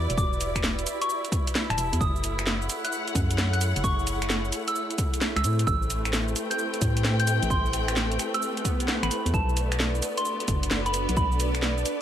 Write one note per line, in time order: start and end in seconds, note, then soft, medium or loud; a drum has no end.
0.00 6.87 E4 medium
0.00 1.97 F#4 medium
0.00 1.97 G4 medium
0.00 1.97 B4 medium
0.00 1.97 D5 medium
0.00 2.00 D5 medium
0.10 0.17 E1 medium
0.10 closed hi-hat medium
0.10 shaker soft
0.17 0.85 E1 loud
0.17 0.47 D6 loud
0.17 kick loud
0.17 shaker soft
0.33 shaker soft
0.41 open hi-hat loud
0.41 shaker medium
0.55 finger snap medium
0.55 kick medium
0.55 closed hi-hat medium
0.55 shaker soft
0.64 snare loud
0.64 shaker soft
0.79 closed hi-hat soft
0.79 shaker soft
0.87 open hi-hat loud
0.87 shaker medium
1.01 1.13 C#6 loud
1.01 closed hi-hat medium
1.01 shaker soft
1.10 shaker soft
1.25 closed hi-hat soft
1.25 shaker soft
1.32 kick loud
1.32 open hi-hat loud
1.32 shaker medium
1.47 closed hi-hat medium
1.47 shaker soft
1.55 snare loud
1.55 shaker soft
1.70 1.77 D1 medium
1.70 1.91 A5 medium
1.70 finger snap medium
1.70 closed hi-hat medium
1.70 shaker soft
1.78 1.91 E1 loud
1.78 open hi-hat loud
1.78 shaker medium
1.93 2.00 E2 medium
1.93 closed hi-hat medium
1.93 shaker soft
2.00 2.68 F#1 loud
2.00 9.30 E4 medium
2.00 5.41 G#4 medium
2.00 5.41 A4 medium
2.00 5.41 C#5 medium
2.00 2.30 D#6 medium
2.00 kick loud
2.00 shaker soft
2.09 12.02 A3 medium
2.16 shaker soft
2.24 open hi-hat loud
2.24 shaker medium
2.39 5.44 F#5 medium
2.39 finger snap medium
2.39 closed hi-hat medium
2.39 shaker soft
2.47 snare loud
2.47 shaker soft
2.62 shaker soft
2.69 open hi-hat loud
2.69 shaker medium
2.84 2.96 F#6 medium
2.84 closed hi-hat medium
2.84 shaker soft
2.92 shaker soft
3.08 closed hi-hat soft
3.08 shaker soft
3.15 3.74 F#2 loud
3.15 kick loud
3.15 open hi-hat loud
3.15 shaker medium
3.31 closed hi-hat medium
3.31 shaker soft
3.38 snare loud
3.38 shaker soft
3.53 3.74 F#6 medium
3.53 closed hi-hat medium
3.53 shaker soft
3.61 open hi-hat loud
3.61 shaker medium
3.76 3.83 F#1 medium
3.76 closed hi-hat medium
3.76 shaker soft
3.84 4.51 F#1 loud
3.84 4.14 C#6 loud
3.84 kick loud
3.84 shaker soft
3.99 shaker soft
4.07 open hi-hat loud
4.07 shaker medium
4.22 finger snap medium
4.22 closed hi-hat medium
4.22 shaker soft
4.30 snare loud
4.30 shaker soft
4.45 shaker soft
4.52 open hi-hat loud
4.52 shaker medium
4.68 4.79 E6 loud
4.68 closed hi-hat medium
4.68 shaker soft
4.76 shaker soft
4.91 closed hi-hat soft
4.91 shaker soft
4.98 kick loud
4.98 open hi-hat loud
4.98 shaker medium
5.14 closed hi-hat medium
5.14 shaker soft
5.21 snare loud
5.21 shaker soft
5.36 5.45 C#2 loud
5.36 5.57 E6 medium
5.36 finger snap medium
5.36 closed hi-hat medium
5.36 shaker soft
5.44 5.65 A2 loud
5.44 9.34 C4 medium
5.44 9.30 G4 medium
5.44 12.02 B4 medium
5.44 9.30 C5 medium
5.44 open hi-hat loud
5.44 shaker medium
5.59 closed hi-hat medium
5.59 shaker soft
5.67 6.34 A1 loud
5.67 5.97 E6 loud
5.67 kick loud
5.67 shaker soft
5.82 shaker soft
5.90 open hi-hat loud
5.90 shaker medium
6.05 finger snap medium
6.05 closed hi-hat medium
6.05 shaker soft
6.13 snare loud
6.13 shaker soft
6.28 shaker soft
6.36 open hi-hat loud
6.36 shaker medium
6.41 9.33 G5 medium
6.50 6.62 G6 medium
6.50 closed hi-hat medium
6.50 shaker soft
6.59 shaker soft
6.74 closed hi-hat soft
6.74 shaker soft
6.81 7.40 A2 loud
6.81 kick loud
6.81 open hi-hat loud
6.81 shaker medium
6.97 closed hi-hat medium
6.97 shaker soft
7.04 snare loud
7.04 shaker soft
7.20 7.40 G6 medium
7.20 closed hi-hat medium
7.20 shaker soft
7.27 open hi-hat loud
7.27 shaker medium
7.42 7.49 A1 medium
7.42 closed hi-hat medium
7.42 shaker soft
7.50 8.18 A1 loud
7.50 7.80 C6 loud
7.50 kick loud
7.50 shaker soft
7.66 shaker soft
7.73 open hi-hat loud
7.73 shaker medium
7.88 finger snap medium
7.88 closed hi-hat medium
7.88 shaker soft
7.96 snare loud
7.96 shaker soft
8.12 closed hi-hat soft
8.12 shaker soft
8.19 finger snap soft
8.19 open hi-hat loud
8.19 shaker medium
8.34 8.45 E6 medium
8.34 closed hi-hat medium
8.34 shaker soft
8.42 swell medium
8.42 shaker soft
8.57 closed hi-hat soft
8.57 shaker soft
8.65 kick loud
8.65 open hi-hat loud
8.65 shaker medium
8.80 closed hi-hat medium
8.80 shaker soft
8.88 snare loud
8.88 shaker soft
9.03 9.10 A1 medium
9.03 9.23 B5 loud
9.03 finger snap medium
9.03 closed hi-hat medium
9.03 shaker soft
9.11 open hi-hat loud
9.11 shaker medium
9.26 9.33 E2 medium
9.26 closed hi-hat medium
9.26 shaker soft
9.33 10.01 B1 loud
9.33 12.02 B3 medium
9.33 12.02 D4 medium
9.33 12.02 F#4 medium
9.33 12.02 A4 medium
9.33 9.64 A5 loud
9.33 kick loud
9.33 shaker soft
9.49 shaker soft
9.57 12.02 D5 medium
9.57 open hi-hat loud
9.57 shaker medium
9.72 finger snap medium
9.72 closed hi-hat medium
9.72 shaker soft
9.80 snare loud
9.80 shaker soft
9.95 shaker soft
10.02 open hi-hat loud
10.02 shaker medium
10.17 10.29 C6 medium
10.17 closed hi-hat medium
10.17 shaker soft
10.25 shaker soft
10.40 closed hi-hat soft
10.40 shaker soft
10.48 11.06 F#1 loud
10.48 kick loud
10.48 open hi-hat loud
10.48 shaker medium
10.63 closed hi-hat medium
10.63 shaker soft
10.71 snare loud
10.71 shaker soft
10.86 11.07 B5 loud
10.86 closed hi-hat medium
10.86 shaker soft
10.94 open hi-hat loud
10.94 shaker medium
11.09 11.16 B1 medium
11.09 closed hi-hat medium
11.09 shaker soft
11.17 11.84 B1 loud
11.17 11.47 B5 loud
11.17 kick loud
11.17 shaker soft
11.32 shaker soft
11.40 open hi-hat loud
11.40 shaker medium
11.55 finger snap medium
11.55 closed hi-hat medium
11.55 shaker soft
11.62 snare loud
11.62 shaker soft
11.78 shaker soft
11.85 open hi-hat loud
11.85 shaker medium